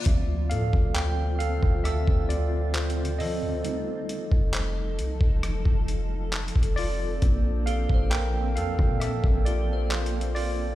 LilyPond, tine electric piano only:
\new Staff \with { instrumentName = "Tine electric piano" } { \time 4/4 \key d \minor \tempo 4 = 67 << { <f' d''>8 <a' f''>8 <c'' g''>8 <a' f''>8 <a' e''>8 <f' d''>8 <f' c''>8 <a' ees''>8~ | <a' ees''>2~ <a' ees''>8 r4 <f' d''>8~ | <f' d''>8 <a' f''>8 <bes' g''>8 <a' f''>8 <a' e''>8 <f' d''>8 <f' c''>8 <f' d''>8 | } \\ { <f c' e''>4. r2 r8 | <g a ees'>1 | <bes c' d'>4. r2 r8 | } >> }